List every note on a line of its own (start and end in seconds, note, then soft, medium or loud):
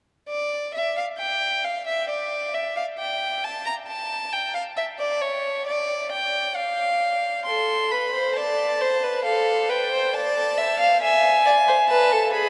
0.29 0.71 D5 medium
0.74 0.96 E5 medium
0.97 1.05 F5 medium
1.18 1.66 G5 medium
1.64 1.86 F5 medium
1.86 2.09 E5 medium
2.09 2.56 D5 medium
2.54 2.76 E5 medium
2.77 2.85 F5 medium
2.99 3.45 G5 medium
3.44 3.65 A5 medium
3.66 3.74 A#5 medium
3.87 4.34 A5 medium
4.32 4.54 G5 medium
4.55 4.63 F5 medium
4.77 4.85 E5 medium
4.99 5.23 D5 medium
5.21 5.66 C#5 medium
5.67 6.11 D5 medium
6.12 6.57 G5 medium
6.55 7.44 F5 medium
7.45 7.93 A4 medium
7.45 7.92 C6 medium
7.91 8.14 B4 medium
7.91 8.35 B5 medium
8.15 8.38 C5 medium
8.35 8.83 D5 medium
8.35 9.23 A5 medium
8.81 9.05 C5 medium
9.03 9.25 B4 medium
9.25 9.71 A4 medium
9.25 9.71 F5 medium
9.69 9.91 B4 medium
9.69 10.15 G5 medium
9.92 10.13 C5 medium
10.14 10.59 D5 medium
10.14 11.01 A5 medium
10.58 10.79 E5 medium
10.80 11.01 F5 medium
11.02 11.45 E5 loud
11.02 11.88 G#5 medium
11.46 11.54 D5 medium
11.68 11.76 C5 medium
11.89 12.13 B4 medium
11.89 12.32 A5 medium
12.12 12.33 A4 medium
12.33 12.49 G#4 medium
12.33 12.49 B5 medium